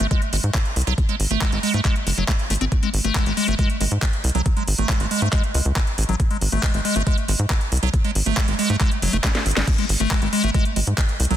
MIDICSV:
0, 0, Header, 1, 4, 480
1, 0, Start_track
1, 0, Tempo, 434783
1, 1082, Time_signature, 4, 2, 24, 8
1, 12550, End_track
2, 0, Start_track
2, 0, Title_t, "Acid bass"
2, 0, Program_c, 0, 38
2, 2, Note_on_c, 0, 57, 101
2, 77, Note_off_c, 0, 57, 0
2, 122, Note_on_c, 0, 56, 99
2, 234, Note_off_c, 0, 56, 0
2, 362, Note_on_c, 0, 56, 75
2, 407, Note_off_c, 0, 56, 0
2, 962, Note_on_c, 0, 54, 102
2, 1037, Note_off_c, 0, 54, 0
2, 1202, Note_on_c, 0, 56, 78
2, 1277, Note_off_c, 0, 56, 0
2, 1442, Note_on_c, 0, 57, 77
2, 1554, Note_off_c, 0, 57, 0
2, 1562, Note_on_c, 0, 56, 82
2, 1674, Note_off_c, 0, 56, 0
2, 1682, Note_on_c, 0, 56, 75
2, 1757, Note_off_c, 0, 56, 0
2, 1802, Note_on_c, 0, 56, 103
2, 1914, Note_off_c, 0, 56, 0
2, 1922, Note_on_c, 0, 57, 101
2, 1997, Note_off_c, 0, 57, 0
2, 2042, Note_on_c, 0, 56, 100
2, 2154, Note_off_c, 0, 56, 0
2, 2282, Note_on_c, 0, 56, 76
2, 2327, Note_off_c, 0, 56, 0
2, 2402, Note_on_c, 0, 54, 77
2, 2477, Note_off_c, 0, 54, 0
2, 2522, Note_on_c, 0, 57, 104
2, 2567, Note_off_c, 0, 57, 0
2, 2762, Note_on_c, 0, 57, 77
2, 2806, Note_off_c, 0, 57, 0
2, 2882, Note_on_c, 0, 60, 77
2, 2927, Note_off_c, 0, 60, 0
2, 3122, Note_on_c, 0, 56, 78
2, 3197, Note_off_c, 0, 56, 0
2, 3362, Note_on_c, 0, 57, 77
2, 3474, Note_off_c, 0, 57, 0
2, 3481, Note_on_c, 0, 56, 82
2, 3594, Note_off_c, 0, 56, 0
2, 3601, Note_on_c, 0, 56, 77
2, 3677, Note_off_c, 0, 56, 0
2, 3721, Note_on_c, 0, 56, 104
2, 3834, Note_off_c, 0, 56, 0
2, 3841, Note_on_c, 0, 57, 100
2, 3916, Note_off_c, 0, 57, 0
2, 3961, Note_on_c, 0, 56, 102
2, 4074, Note_off_c, 0, 56, 0
2, 4202, Note_on_c, 0, 56, 77
2, 4247, Note_off_c, 0, 56, 0
2, 4802, Note_on_c, 0, 54, 103
2, 4877, Note_off_c, 0, 54, 0
2, 5042, Note_on_c, 0, 56, 76
2, 5117, Note_off_c, 0, 56, 0
2, 5282, Note_on_c, 0, 57, 76
2, 5394, Note_off_c, 0, 57, 0
2, 5402, Note_on_c, 0, 56, 86
2, 5514, Note_off_c, 0, 56, 0
2, 5522, Note_on_c, 0, 56, 76
2, 5597, Note_off_c, 0, 56, 0
2, 5642, Note_on_c, 0, 56, 104
2, 5754, Note_off_c, 0, 56, 0
2, 5762, Note_on_c, 0, 57, 101
2, 5837, Note_off_c, 0, 57, 0
2, 5882, Note_on_c, 0, 56, 100
2, 5994, Note_off_c, 0, 56, 0
2, 6122, Note_on_c, 0, 56, 78
2, 6167, Note_off_c, 0, 56, 0
2, 6722, Note_on_c, 0, 54, 102
2, 6797, Note_off_c, 0, 54, 0
2, 6962, Note_on_c, 0, 56, 76
2, 7037, Note_off_c, 0, 56, 0
2, 7202, Note_on_c, 0, 57, 76
2, 7314, Note_off_c, 0, 57, 0
2, 7322, Note_on_c, 0, 56, 83
2, 7434, Note_off_c, 0, 56, 0
2, 7442, Note_on_c, 0, 56, 78
2, 7517, Note_off_c, 0, 56, 0
2, 7562, Note_on_c, 0, 56, 105
2, 7674, Note_off_c, 0, 56, 0
2, 7681, Note_on_c, 0, 57, 103
2, 7756, Note_off_c, 0, 57, 0
2, 7802, Note_on_c, 0, 56, 100
2, 7914, Note_off_c, 0, 56, 0
2, 8041, Note_on_c, 0, 56, 77
2, 8086, Note_off_c, 0, 56, 0
2, 8641, Note_on_c, 0, 54, 105
2, 8717, Note_off_c, 0, 54, 0
2, 8881, Note_on_c, 0, 56, 79
2, 8956, Note_off_c, 0, 56, 0
2, 9122, Note_on_c, 0, 57, 78
2, 9234, Note_off_c, 0, 57, 0
2, 9241, Note_on_c, 0, 56, 84
2, 9354, Note_off_c, 0, 56, 0
2, 9361, Note_on_c, 0, 56, 76
2, 9436, Note_off_c, 0, 56, 0
2, 9481, Note_on_c, 0, 56, 106
2, 9594, Note_off_c, 0, 56, 0
2, 9601, Note_on_c, 0, 57, 102
2, 9676, Note_off_c, 0, 57, 0
2, 9721, Note_on_c, 0, 56, 100
2, 9834, Note_off_c, 0, 56, 0
2, 9961, Note_on_c, 0, 54, 78
2, 10074, Note_off_c, 0, 54, 0
2, 10081, Note_on_c, 0, 57, 103
2, 10126, Note_off_c, 0, 57, 0
2, 10201, Note_on_c, 0, 56, 82
2, 10246, Note_off_c, 0, 56, 0
2, 10561, Note_on_c, 0, 56, 78
2, 10606, Note_off_c, 0, 56, 0
2, 10801, Note_on_c, 0, 56, 79
2, 10876, Note_off_c, 0, 56, 0
2, 11041, Note_on_c, 0, 57, 77
2, 11154, Note_off_c, 0, 57, 0
2, 11161, Note_on_c, 0, 56, 87
2, 11274, Note_off_c, 0, 56, 0
2, 11282, Note_on_c, 0, 56, 80
2, 11357, Note_off_c, 0, 56, 0
2, 11401, Note_on_c, 0, 56, 103
2, 11514, Note_off_c, 0, 56, 0
2, 11522, Note_on_c, 0, 57, 104
2, 11597, Note_off_c, 0, 57, 0
2, 11642, Note_on_c, 0, 56, 101
2, 11754, Note_off_c, 0, 56, 0
2, 11882, Note_on_c, 0, 56, 79
2, 11927, Note_off_c, 0, 56, 0
2, 12482, Note_on_c, 0, 54, 103
2, 12550, Note_off_c, 0, 54, 0
2, 12550, End_track
3, 0, Start_track
3, 0, Title_t, "Analog synth bass"
3, 0, Program_c, 1, 38
3, 1, Note_on_c, 1, 32, 83
3, 77, Note_off_c, 1, 32, 0
3, 361, Note_on_c, 1, 32, 93
3, 436, Note_off_c, 1, 32, 0
3, 481, Note_on_c, 1, 44, 84
3, 557, Note_off_c, 1, 44, 0
3, 841, Note_on_c, 1, 36, 94
3, 917, Note_off_c, 1, 36, 0
3, 961, Note_on_c, 1, 36, 83
3, 1036, Note_off_c, 1, 36, 0
3, 1321, Note_on_c, 1, 32, 92
3, 1396, Note_off_c, 1, 32, 0
3, 1441, Note_on_c, 1, 32, 79
3, 1516, Note_off_c, 1, 32, 0
3, 1681, Note_on_c, 1, 32, 79
3, 1756, Note_off_c, 1, 32, 0
3, 1921, Note_on_c, 1, 44, 84
3, 1996, Note_off_c, 1, 44, 0
3, 2281, Note_on_c, 1, 30, 95
3, 2356, Note_off_c, 1, 30, 0
3, 2401, Note_on_c, 1, 30, 83
3, 2476, Note_off_c, 1, 30, 0
3, 2761, Note_on_c, 1, 32, 92
3, 2836, Note_off_c, 1, 32, 0
3, 2881, Note_on_c, 1, 32, 82
3, 2956, Note_off_c, 1, 32, 0
3, 3241, Note_on_c, 1, 32, 91
3, 3316, Note_off_c, 1, 32, 0
3, 3361, Note_on_c, 1, 32, 84
3, 3436, Note_off_c, 1, 32, 0
3, 3601, Note_on_c, 1, 32, 77
3, 3676, Note_off_c, 1, 32, 0
3, 3841, Note_on_c, 1, 32, 83
3, 3916, Note_off_c, 1, 32, 0
3, 4201, Note_on_c, 1, 32, 96
3, 4276, Note_off_c, 1, 32, 0
3, 4321, Note_on_c, 1, 44, 82
3, 4396, Note_off_c, 1, 44, 0
3, 4681, Note_on_c, 1, 36, 94
3, 4756, Note_off_c, 1, 36, 0
3, 4801, Note_on_c, 1, 36, 82
3, 4876, Note_off_c, 1, 36, 0
3, 5161, Note_on_c, 1, 32, 91
3, 5236, Note_off_c, 1, 32, 0
3, 5281, Note_on_c, 1, 32, 82
3, 5356, Note_off_c, 1, 32, 0
3, 5521, Note_on_c, 1, 32, 77
3, 5596, Note_off_c, 1, 32, 0
3, 5761, Note_on_c, 1, 44, 83
3, 5837, Note_off_c, 1, 44, 0
3, 6121, Note_on_c, 1, 37, 98
3, 6197, Note_off_c, 1, 37, 0
3, 6241, Note_on_c, 1, 37, 85
3, 6316, Note_off_c, 1, 37, 0
3, 6601, Note_on_c, 1, 33, 95
3, 6676, Note_off_c, 1, 33, 0
3, 6721, Note_on_c, 1, 33, 82
3, 6796, Note_off_c, 1, 33, 0
3, 7081, Note_on_c, 1, 32, 93
3, 7156, Note_off_c, 1, 32, 0
3, 7201, Note_on_c, 1, 32, 84
3, 7276, Note_off_c, 1, 32, 0
3, 7441, Note_on_c, 1, 32, 78
3, 7516, Note_off_c, 1, 32, 0
3, 7681, Note_on_c, 1, 32, 82
3, 7756, Note_off_c, 1, 32, 0
3, 8041, Note_on_c, 1, 32, 95
3, 8116, Note_off_c, 1, 32, 0
3, 8161, Note_on_c, 1, 44, 82
3, 8236, Note_off_c, 1, 44, 0
3, 8521, Note_on_c, 1, 36, 94
3, 8596, Note_off_c, 1, 36, 0
3, 8641, Note_on_c, 1, 36, 85
3, 8716, Note_off_c, 1, 36, 0
3, 9001, Note_on_c, 1, 32, 93
3, 9076, Note_off_c, 1, 32, 0
3, 9121, Note_on_c, 1, 32, 83
3, 9196, Note_off_c, 1, 32, 0
3, 9361, Note_on_c, 1, 32, 77
3, 9436, Note_off_c, 1, 32, 0
3, 9601, Note_on_c, 1, 44, 84
3, 9676, Note_off_c, 1, 44, 0
3, 9961, Note_on_c, 1, 30, 97
3, 10036, Note_off_c, 1, 30, 0
3, 10081, Note_on_c, 1, 30, 83
3, 10156, Note_off_c, 1, 30, 0
3, 10441, Note_on_c, 1, 32, 93
3, 10516, Note_off_c, 1, 32, 0
3, 10561, Note_on_c, 1, 32, 84
3, 10636, Note_off_c, 1, 32, 0
3, 10921, Note_on_c, 1, 32, 94
3, 10996, Note_off_c, 1, 32, 0
3, 11042, Note_on_c, 1, 32, 82
3, 11117, Note_off_c, 1, 32, 0
3, 11281, Note_on_c, 1, 32, 78
3, 11357, Note_off_c, 1, 32, 0
3, 11521, Note_on_c, 1, 32, 84
3, 11597, Note_off_c, 1, 32, 0
3, 11881, Note_on_c, 1, 32, 98
3, 11956, Note_off_c, 1, 32, 0
3, 12001, Note_on_c, 1, 44, 82
3, 12077, Note_off_c, 1, 44, 0
3, 12362, Note_on_c, 1, 36, 93
3, 12437, Note_off_c, 1, 36, 0
3, 12482, Note_on_c, 1, 36, 84
3, 12550, Note_off_c, 1, 36, 0
3, 12550, End_track
4, 0, Start_track
4, 0, Title_t, "Drums"
4, 2, Note_on_c, 9, 42, 49
4, 112, Note_off_c, 9, 42, 0
4, 121, Note_on_c, 9, 42, 76
4, 122, Note_on_c, 9, 36, 127
4, 232, Note_off_c, 9, 36, 0
4, 232, Note_off_c, 9, 42, 0
4, 241, Note_on_c, 9, 42, 50
4, 352, Note_off_c, 9, 42, 0
4, 361, Note_on_c, 9, 46, 107
4, 472, Note_off_c, 9, 46, 0
4, 481, Note_on_c, 9, 42, 50
4, 592, Note_off_c, 9, 42, 0
4, 601, Note_on_c, 9, 39, 121
4, 601, Note_on_c, 9, 42, 78
4, 602, Note_on_c, 9, 36, 125
4, 712, Note_off_c, 9, 36, 0
4, 712, Note_off_c, 9, 39, 0
4, 712, Note_off_c, 9, 42, 0
4, 722, Note_on_c, 9, 42, 50
4, 832, Note_off_c, 9, 42, 0
4, 842, Note_on_c, 9, 46, 110
4, 902, Note_on_c, 9, 42, 63
4, 952, Note_off_c, 9, 46, 0
4, 962, Note_off_c, 9, 42, 0
4, 962, Note_on_c, 9, 42, 51
4, 1072, Note_off_c, 9, 42, 0
4, 1081, Note_on_c, 9, 36, 123
4, 1082, Note_on_c, 9, 42, 73
4, 1192, Note_off_c, 9, 36, 0
4, 1192, Note_off_c, 9, 42, 0
4, 1202, Note_on_c, 9, 42, 51
4, 1312, Note_off_c, 9, 42, 0
4, 1322, Note_on_c, 9, 46, 105
4, 1432, Note_off_c, 9, 46, 0
4, 1442, Note_on_c, 9, 42, 51
4, 1552, Note_off_c, 9, 42, 0
4, 1561, Note_on_c, 9, 36, 124
4, 1562, Note_on_c, 9, 39, 116
4, 1562, Note_on_c, 9, 42, 49
4, 1672, Note_off_c, 9, 36, 0
4, 1672, Note_off_c, 9, 39, 0
4, 1672, Note_off_c, 9, 42, 0
4, 1682, Note_on_c, 9, 42, 74
4, 1792, Note_off_c, 9, 42, 0
4, 1802, Note_on_c, 9, 46, 108
4, 1912, Note_off_c, 9, 46, 0
4, 1922, Note_on_c, 9, 42, 49
4, 2032, Note_off_c, 9, 42, 0
4, 2041, Note_on_c, 9, 39, 60
4, 2041, Note_on_c, 9, 42, 76
4, 2042, Note_on_c, 9, 36, 126
4, 2152, Note_off_c, 9, 36, 0
4, 2152, Note_off_c, 9, 39, 0
4, 2152, Note_off_c, 9, 42, 0
4, 2161, Note_on_c, 9, 42, 49
4, 2272, Note_off_c, 9, 42, 0
4, 2281, Note_on_c, 9, 46, 110
4, 2392, Note_off_c, 9, 46, 0
4, 2401, Note_on_c, 9, 42, 49
4, 2512, Note_off_c, 9, 42, 0
4, 2521, Note_on_c, 9, 36, 120
4, 2522, Note_on_c, 9, 39, 114
4, 2522, Note_on_c, 9, 42, 74
4, 2632, Note_off_c, 9, 36, 0
4, 2632, Note_off_c, 9, 39, 0
4, 2632, Note_off_c, 9, 42, 0
4, 2642, Note_on_c, 9, 42, 51
4, 2752, Note_off_c, 9, 42, 0
4, 2762, Note_on_c, 9, 46, 107
4, 2821, Note_on_c, 9, 42, 60
4, 2872, Note_off_c, 9, 46, 0
4, 2882, Note_off_c, 9, 42, 0
4, 2882, Note_on_c, 9, 42, 50
4, 2992, Note_off_c, 9, 42, 0
4, 3001, Note_on_c, 9, 36, 122
4, 3002, Note_on_c, 9, 42, 74
4, 3112, Note_off_c, 9, 36, 0
4, 3112, Note_off_c, 9, 42, 0
4, 3121, Note_on_c, 9, 42, 52
4, 3232, Note_off_c, 9, 42, 0
4, 3241, Note_on_c, 9, 46, 101
4, 3352, Note_off_c, 9, 46, 0
4, 3361, Note_on_c, 9, 42, 51
4, 3472, Note_off_c, 9, 42, 0
4, 3481, Note_on_c, 9, 36, 121
4, 3482, Note_on_c, 9, 39, 112
4, 3482, Note_on_c, 9, 42, 51
4, 3592, Note_off_c, 9, 36, 0
4, 3592, Note_off_c, 9, 39, 0
4, 3592, Note_off_c, 9, 42, 0
4, 3602, Note_on_c, 9, 42, 74
4, 3712, Note_off_c, 9, 42, 0
4, 3721, Note_on_c, 9, 46, 107
4, 3832, Note_off_c, 9, 46, 0
4, 3841, Note_on_c, 9, 42, 51
4, 3952, Note_off_c, 9, 42, 0
4, 3961, Note_on_c, 9, 36, 119
4, 3961, Note_on_c, 9, 42, 78
4, 4072, Note_off_c, 9, 36, 0
4, 4072, Note_off_c, 9, 42, 0
4, 4081, Note_on_c, 9, 42, 50
4, 4192, Note_off_c, 9, 42, 0
4, 4201, Note_on_c, 9, 46, 106
4, 4312, Note_off_c, 9, 46, 0
4, 4321, Note_on_c, 9, 42, 52
4, 4432, Note_off_c, 9, 42, 0
4, 4441, Note_on_c, 9, 36, 117
4, 4441, Note_on_c, 9, 39, 112
4, 4441, Note_on_c, 9, 42, 76
4, 4552, Note_off_c, 9, 36, 0
4, 4552, Note_off_c, 9, 39, 0
4, 4552, Note_off_c, 9, 42, 0
4, 4561, Note_on_c, 9, 42, 51
4, 4672, Note_off_c, 9, 42, 0
4, 4681, Note_on_c, 9, 46, 104
4, 4741, Note_on_c, 9, 42, 61
4, 4791, Note_off_c, 9, 46, 0
4, 4801, Note_off_c, 9, 42, 0
4, 4801, Note_on_c, 9, 42, 50
4, 4912, Note_off_c, 9, 42, 0
4, 4921, Note_on_c, 9, 42, 77
4, 4922, Note_on_c, 9, 36, 117
4, 5031, Note_off_c, 9, 42, 0
4, 5032, Note_off_c, 9, 36, 0
4, 5041, Note_on_c, 9, 42, 52
4, 5152, Note_off_c, 9, 42, 0
4, 5162, Note_on_c, 9, 46, 100
4, 5272, Note_off_c, 9, 46, 0
4, 5281, Note_on_c, 9, 42, 52
4, 5392, Note_off_c, 9, 42, 0
4, 5401, Note_on_c, 9, 39, 114
4, 5401, Note_on_c, 9, 42, 52
4, 5402, Note_on_c, 9, 36, 118
4, 5511, Note_off_c, 9, 39, 0
4, 5511, Note_off_c, 9, 42, 0
4, 5512, Note_off_c, 9, 36, 0
4, 5521, Note_on_c, 9, 42, 78
4, 5631, Note_off_c, 9, 42, 0
4, 5641, Note_on_c, 9, 46, 102
4, 5752, Note_off_c, 9, 46, 0
4, 5761, Note_on_c, 9, 42, 51
4, 5872, Note_off_c, 9, 42, 0
4, 5881, Note_on_c, 9, 39, 59
4, 5881, Note_on_c, 9, 42, 79
4, 5882, Note_on_c, 9, 36, 119
4, 5992, Note_off_c, 9, 36, 0
4, 5992, Note_off_c, 9, 39, 0
4, 5992, Note_off_c, 9, 42, 0
4, 6001, Note_on_c, 9, 42, 52
4, 6112, Note_off_c, 9, 42, 0
4, 6121, Note_on_c, 9, 46, 104
4, 6232, Note_off_c, 9, 46, 0
4, 6241, Note_on_c, 9, 42, 52
4, 6352, Note_off_c, 9, 42, 0
4, 6361, Note_on_c, 9, 39, 112
4, 6361, Note_on_c, 9, 42, 77
4, 6362, Note_on_c, 9, 36, 114
4, 6472, Note_off_c, 9, 36, 0
4, 6472, Note_off_c, 9, 39, 0
4, 6472, Note_off_c, 9, 42, 0
4, 6482, Note_on_c, 9, 42, 52
4, 6592, Note_off_c, 9, 42, 0
4, 6601, Note_on_c, 9, 46, 103
4, 6661, Note_on_c, 9, 42, 64
4, 6712, Note_off_c, 9, 46, 0
4, 6721, Note_off_c, 9, 42, 0
4, 6721, Note_on_c, 9, 42, 51
4, 6832, Note_off_c, 9, 42, 0
4, 6842, Note_on_c, 9, 36, 117
4, 6842, Note_on_c, 9, 42, 82
4, 6952, Note_off_c, 9, 36, 0
4, 6952, Note_off_c, 9, 42, 0
4, 6962, Note_on_c, 9, 42, 55
4, 7072, Note_off_c, 9, 42, 0
4, 7081, Note_on_c, 9, 46, 95
4, 7192, Note_off_c, 9, 46, 0
4, 7201, Note_on_c, 9, 42, 55
4, 7312, Note_off_c, 9, 42, 0
4, 7322, Note_on_c, 9, 36, 117
4, 7322, Note_on_c, 9, 39, 117
4, 7322, Note_on_c, 9, 42, 54
4, 7432, Note_off_c, 9, 36, 0
4, 7432, Note_off_c, 9, 39, 0
4, 7432, Note_off_c, 9, 42, 0
4, 7441, Note_on_c, 9, 42, 81
4, 7552, Note_off_c, 9, 42, 0
4, 7561, Note_on_c, 9, 46, 104
4, 7672, Note_off_c, 9, 46, 0
4, 7682, Note_on_c, 9, 42, 55
4, 7792, Note_off_c, 9, 42, 0
4, 7801, Note_on_c, 9, 42, 82
4, 7802, Note_on_c, 9, 36, 118
4, 7912, Note_off_c, 9, 36, 0
4, 7912, Note_off_c, 9, 42, 0
4, 7922, Note_on_c, 9, 42, 55
4, 8032, Note_off_c, 9, 42, 0
4, 8041, Note_on_c, 9, 46, 101
4, 8152, Note_off_c, 9, 46, 0
4, 8161, Note_on_c, 9, 42, 53
4, 8272, Note_off_c, 9, 42, 0
4, 8281, Note_on_c, 9, 36, 114
4, 8281, Note_on_c, 9, 39, 115
4, 8281, Note_on_c, 9, 42, 82
4, 8391, Note_off_c, 9, 39, 0
4, 8391, Note_off_c, 9, 42, 0
4, 8392, Note_off_c, 9, 36, 0
4, 8401, Note_on_c, 9, 42, 54
4, 8512, Note_off_c, 9, 42, 0
4, 8521, Note_on_c, 9, 46, 104
4, 8581, Note_on_c, 9, 42, 66
4, 8632, Note_off_c, 9, 46, 0
4, 8641, Note_off_c, 9, 42, 0
4, 8641, Note_on_c, 9, 42, 55
4, 8752, Note_off_c, 9, 42, 0
4, 8761, Note_on_c, 9, 36, 120
4, 8761, Note_on_c, 9, 42, 82
4, 8872, Note_off_c, 9, 36, 0
4, 8872, Note_off_c, 9, 42, 0
4, 8881, Note_on_c, 9, 42, 57
4, 8992, Note_off_c, 9, 42, 0
4, 9001, Note_on_c, 9, 46, 101
4, 9112, Note_off_c, 9, 46, 0
4, 9121, Note_on_c, 9, 42, 55
4, 9232, Note_off_c, 9, 42, 0
4, 9241, Note_on_c, 9, 36, 120
4, 9242, Note_on_c, 9, 39, 124
4, 9242, Note_on_c, 9, 42, 54
4, 9352, Note_off_c, 9, 36, 0
4, 9352, Note_off_c, 9, 39, 0
4, 9352, Note_off_c, 9, 42, 0
4, 9361, Note_on_c, 9, 42, 84
4, 9472, Note_off_c, 9, 42, 0
4, 9482, Note_on_c, 9, 46, 105
4, 9592, Note_off_c, 9, 46, 0
4, 9602, Note_on_c, 9, 42, 55
4, 9712, Note_off_c, 9, 42, 0
4, 9721, Note_on_c, 9, 36, 120
4, 9722, Note_on_c, 9, 39, 64
4, 9722, Note_on_c, 9, 42, 86
4, 9832, Note_off_c, 9, 36, 0
4, 9832, Note_off_c, 9, 39, 0
4, 9832, Note_off_c, 9, 42, 0
4, 9842, Note_on_c, 9, 42, 54
4, 9952, Note_off_c, 9, 42, 0
4, 9962, Note_on_c, 9, 46, 102
4, 10072, Note_off_c, 9, 46, 0
4, 10082, Note_on_c, 9, 42, 56
4, 10192, Note_off_c, 9, 42, 0
4, 10201, Note_on_c, 9, 36, 115
4, 10202, Note_on_c, 9, 38, 62
4, 10202, Note_on_c, 9, 39, 125
4, 10202, Note_on_c, 9, 42, 84
4, 10312, Note_off_c, 9, 36, 0
4, 10312, Note_off_c, 9, 38, 0
4, 10312, Note_off_c, 9, 39, 0
4, 10312, Note_off_c, 9, 42, 0
4, 10322, Note_on_c, 9, 38, 64
4, 10322, Note_on_c, 9, 42, 57
4, 10432, Note_off_c, 9, 38, 0
4, 10432, Note_off_c, 9, 42, 0
4, 10442, Note_on_c, 9, 46, 105
4, 10502, Note_on_c, 9, 42, 68
4, 10552, Note_off_c, 9, 46, 0
4, 10562, Note_on_c, 9, 38, 84
4, 10612, Note_off_c, 9, 42, 0
4, 10672, Note_off_c, 9, 38, 0
4, 10681, Note_on_c, 9, 36, 127
4, 10682, Note_on_c, 9, 42, 83
4, 10682, Note_on_c, 9, 49, 102
4, 10792, Note_off_c, 9, 36, 0
4, 10792, Note_off_c, 9, 42, 0
4, 10792, Note_off_c, 9, 49, 0
4, 10801, Note_on_c, 9, 42, 57
4, 10912, Note_off_c, 9, 42, 0
4, 10921, Note_on_c, 9, 46, 108
4, 11032, Note_off_c, 9, 46, 0
4, 11041, Note_on_c, 9, 42, 57
4, 11152, Note_off_c, 9, 42, 0
4, 11161, Note_on_c, 9, 36, 124
4, 11161, Note_on_c, 9, 39, 127
4, 11161, Note_on_c, 9, 42, 56
4, 11272, Note_off_c, 9, 36, 0
4, 11272, Note_off_c, 9, 39, 0
4, 11272, Note_off_c, 9, 42, 0
4, 11281, Note_on_c, 9, 42, 83
4, 11392, Note_off_c, 9, 42, 0
4, 11401, Note_on_c, 9, 46, 110
4, 11512, Note_off_c, 9, 46, 0
4, 11521, Note_on_c, 9, 42, 56
4, 11632, Note_off_c, 9, 42, 0
4, 11641, Note_on_c, 9, 36, 121
4, 11641, Note_on_c, 9, 42, 82
4, 11752, Note_off_c, 9, 36, 0
4, 11752, Note_off_c, 9, 42, 0
4, 11761, Note_on_c, 9, 42, 54
4, 11872, Note_off_c, 9, 42, 0
4, 11881, Note_on_c, 9, 46, 108
4, 11992, Note_off_c, 9, 46, 0
4, 12002, Note_on_c, 9, 42, 58
4, 12112, Note_off_c, 9, 42, 0
4, 12121, Note_on_c, 9, 36, 124
4, 12122, Note_on_c, 9, 39, 123
4, 12122, Note_on_c, 9, 42, 84
4, 12232, Note_off_c, 9, 36, 0
4, 12232, Note_off_c, 9, 39, 0
4, 12232, Note_off_c, 9, 42, 0
4, 12242, Note_on_c, 9, 42, 57
4, 12352, Note_off_c, 9, 42, 0
4, 12362, Note_on_c, 9, 46, 109
4, 12421, Note_on_c, 9, 42, 68
4, 12472, Note_off_c, 9, 46, 0
4, 12482, Note_off_c, 9, 42, 0
4, 12482, Note_on_c, 9, 42, 55
4, 12550, Note_off_c, 9, 42, 0
4, 12550, End_track
0, 0, End_of_file